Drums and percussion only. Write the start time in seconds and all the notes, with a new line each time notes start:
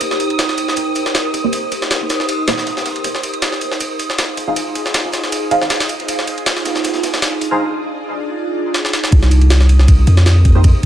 0.01 kick, closed hi-hat, ride
0.11 snare
0.20 closed hi-hat, ride
0.30 ride
0.39 snare, closed hi-hat, ride
0.49 snare
0.57 closed hi-hat, ride
0.68 snare
0.76 kick, closed hi-hat, ride
0.95 closed hi-hat, ride
1.06 snare
1.14 snare, closed hi-hat, ride
1.34 kick, closed hi-hat, ride
1.52 kick, closed hi-hat, ride
1.72 kick, closed hi-hat, ride
1.82 snare
1.91 snare, closed hi-hat, ride
2.00 kick, snare
2.09 snare, closed hi-hat, ride
2.20 snare
2.28 closed hi-hat, ride
2.47 snare, closed hi-hat, ride
2.57 snare, closed hi-hat
2.66 snare, closed hi-hat, ride
2.77 snare, closed hi-hat
2.86 snare, closed hi-hat, ride
2.96 ride
3.04 kick, closed hi-hat, ride
3.15 snare
3.23 closed hi-hat, ride
3.34 ride
3.42 snare, closed hi-hat, ride
3.52 snare
3.61 closed hi-hat, ride
3.71 snare
3.80 kick, closed hi-hat, ride
3.99 closed hi-hat, ride
4.10 snare
4.18 snare, closed hi-hat, ride
4.37 kick, closed hi-hat, ride
4.56 kick, closed hi-hat, ride
4.75 kick, closed hi-hat, ride
4.84 snare
4.94 snare, closed hi-hat, ride
5.05 kick, snare
5.12 snare, closed hi-hat, ride
5.23 snare
5.32 closed hi-hat, ride
5.51 kick, ride
5.61 snare
5.70 snare, closed hi-hat, ride
5.80 snare, ride
5.89 closed hi-hat, ride
6.00 snare, ride
6.08 kick, closed hi-hat, ride
6.19 snare
6.27 closed hi-hat, ride
6.38 ride
6.46 snare, closed hi-hat, ride
6.56 snare
6.65 snare, closed hi-hat, ride
6.75 snare, closed hi-hat
6.84 kick, snare, closed hi-hat, ride
6.94 snare, closed hi-hat
7.03 snare, closed hi-hat, ride
7.13 snare, closed hi-hat
7.22 snare, closed hi-hat, ride
7.41 kick, closed hi-hat, ride
8.74 snare
8.85 snare
8.93 snare
9.04 snare
9.12 kick, ride
9.22 snare
9.31 ride
9.41 ride
9.50 snare, ride
9.61 snare
9.69 ride
9.79 snare
9.88 kick, ride
10.07 ride
10.17 snare
10.26 snare, ride
10.45 kick, ride
10.64 kick, ride